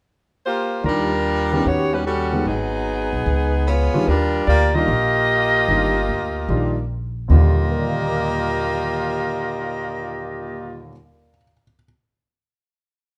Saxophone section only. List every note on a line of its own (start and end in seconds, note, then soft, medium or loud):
0.46 0.83 A#3 medium
0.46 0.83 F4 medium
0.46 0.83 G4 medium
0.46 0.83 C5 medium
0.86 1.66 G3 medium
0.86 1.66 D4 medium
0.86 1.66 F4 medium
0.86 1.66 A#4 medium
1.67 1.93 B3 medium
1.67 1.93 F#4 medium
1.67 1.94 G4 medium
1.67 1.93 C#5 medium
1.94 2.06 G3 medium
1.94 2.06 C#4 medium
1.94 2.06 F#4 medium
1.94 2.06 B4 medium
2.07 2.44 G3 medium
2.07 2.44 C#4 medium
2.07 2.44 F#4 medium
2.07 2.44 A4 medium
2.47 3.27 F#3 medium
2.47 3.67 B3 medium
2.47 3.67 D#4 medium
2.47 3.67 G#4 medium
3.68 4.08 B3 medium
3.68 4.08 F4 medium
3.68 4.08 G#4 medium
3.68 4.08 C#5 medium
4.08 4.48 G3 medium
4.08 4.48 D4 medium
4.08 4.47 F4 medium
4.08 4.48 A#4 medium
4.48 4.73 A#3 medium
4.48 4.73 F4 medium
4.48 4.73 G4 medium
4.48 4.73 D5 loud
4.74 6.90 A#3 medium
4.74 6.89 F4 medium
4.74 6.89 G4 medium
4.74 6.89 D#5 loud
7.30 10.87 A#3 medium
7.30 10.88 F4 medium
7.30 10.88 G4 medium
7.30 10.88 D#5 medium